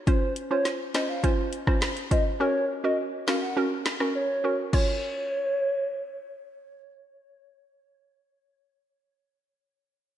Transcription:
0.07 0.20 C#4 medium
0.07 0.20 F4 medium
0.07 0.32 C5 medium
0.07 0.21 C5 loud
0.07 kick loud
0.07 closed hi-hat medium
0.36 closed hi-hat medium
0.51 0.91 C#4 medium
0.51 0.91 F4 medium
0.51 0.91 C5 medium
0.51 0.63 C#5 medium
0.65 snare medium
0.65 closed hi-hat medium
0.94 1.21 C#4 medium
0.94 1.21 F4 medium
0.94 1.22 C5 medium
0.94 1.07 D#5 medium
0.94 cross-stick medium
0.94 snare loud
0.94 closed hi-hat medium
1.09 1.22 F5 medium
1.24 1.64 C#4 loud
1.24 1.64 F4 medium
1.24 1.64 C5 loud
1.24 kick medium
1.24 closed hi-hat medium
1.53 closed hi-hat medium
1.67 1.80 C#4 medium
1.67 1.81 F4 medium
1.67 1.81 C5 medium
1.67 kick medium
1.67 cross-stick medium
1.82 cross-stick medium
1.82 snare loud
1.82 closed hi-hat medium
1.97 closed hi-hat medium
2.11 2.24 C#4 medium
2.11 2.24 F4 medium
2.11 2.24 C5 medium
2.11 2.24 D#5 medium
2.11 kick medium
2.11 closed hi-hat medium
2.40 2.53 C#4 medium
2.40 2.53 F#4 medium
2.40 2.54 A#4 loud
2.40 2.65 C#5 loud
2.84 3.24 C#4 medium
2.84 3.24 F#4 medium
2.84 3.24 A#4 medium
2.84 2.96 D#5 medium
3.28 3.54 C#4 medium
3.28 3.54 F#4 medium
3.28 3.55 A#4 medium
3.28 3.40 F5 medium
3.28 cross-stick medium
3.28 snare loud
3.42 3.55 F#5 medium
3.57 3.97 C#4 medium
3.57 3.97 F#4 medium
3.57 3.97 A#4 loud
3.86 cross-stick medium
3.86 snare loud
4.00 4.14 C#4 medium
4.00 4.14 F#4 medium
4.00 4.14 A#4 medium
4.00 cross-stick medium
4.15 4.56 C#5 medium
4.44 4.57 C#4 medium
4.44 4.57 F#4 medium
4.44 4.57 A#4 medium
4.73 8.52 C#4 medium
4.73 8.52 F4 medium
4.73 6.44 C#5 medium
4.73 8.53 C#5 medium
4.73 kick loud
4.73 crash medium

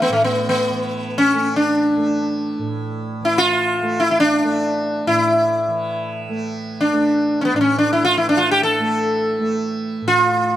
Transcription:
0.00 0.70 E3 medium
0.00 1.33 A3 medium
0.00 0.11 B3 medium
0.09 2.58 A2 medium
0.09 0.24 A3 medium
0.24 0.48 B3 medium
0.49 1.20 B3 medium
0.70 3.20 E3 medium
1.18 1.56 C#4 medium
1.33 1.97 A3 medium
1.56 2.67 D4 medium
1.97 3.82 A3 medium
2.59 5.07 A2 medium
3.21 5.68 E3 medium
3.25 3.38 E4 medium
3.38 4.01 F4 medium
3.82 4.43 A3 medium
4.00 4.10 E4 medium
4.11 4.19 E4 medium
4.20 5.07 D4 medium
4.43 6.29 A3 medium
5.07 7.53 A2 soft
5.07 6.20 E4 medium
5.68 8.17 E3 medium
6.29 6.92 A3 soft
6.81 7.41 D4 medium
6.92 8.80 A3 medium
7.41 7.56 B3 medium
7.41 7.45 C#4 medium
7.54 10.01 A2 medium
7.54 7.60 D4 medium
7.61 7.77 C#4 medium
7.78 7.92 D4 medium
7.93 8.03 E4 medium
8.05 8.15 F4 medium
8.17 10.56 E3 medium
8.17 8.27 E4 medium
8.29 8.39 D4 medium
8.37 8.50 F4 medium
8.51 8.63 G4 medium
8.63 9.52 A4 medium
8.80 9.39 A3 medium
9.39 10.56 A3 medium
10.02 10.56 A2 medium
10.08 10.56 F4 medium

